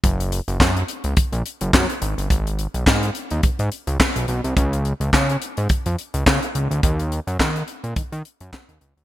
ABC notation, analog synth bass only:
X:1
M:4/4
L:1/16
Q:"Swing 16ths" 1/4=106
K:G#dor
V:1 name="Analog synth bass" clef=bass
F,,,3 F,,, F,,2 z C,, z A,,, z F,,, F,, z G,,, =G,,, | G,,,3 B,,, G,,2 z D,, G,, G,, z C,, z B,,, B,,, ^B,,, | C,,3 C,, C,2 z G,, z E,, z C,, C, z C,, =D,, | D,,3 F,, D,2 z A,, D, D, z F,, z D,, C,, =D,, |]